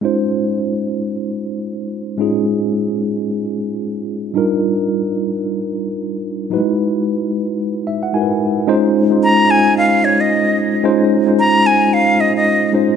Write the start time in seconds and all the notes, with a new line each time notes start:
0.01 G#3 C#4 D#4 F4 C5
2.18 G#3 C#4 D#4 F4 G#4
4.34 G3 D4 D#4 F4 A#4
6.50 F#3 D#4 E4 F#4 B4
6.57 G#3
7.87 E5
8.03 F#5
8.13 G#3 D#4 E4 F#4 A#4 G#5
8.21 B4
8.67 G#3 C#4 D#4 F4 C5
9.10 G#3 C#4 D#4 F4 C5
9.24 A#5
9.48 G#3 C#4 D#4 F4 D#5 G#5
9.78 F5
10.05 C#5
10.20 D#5
10.84 G#3 C#4 D#4 F4 C5
11.26 G#3 C#4 D#4 F4 C5
11.40 A#5
11.66 G#5
11.93 F5
12.21 D#5
12.36 D#5
12.73 G#3 C#4 D#4 F4 C5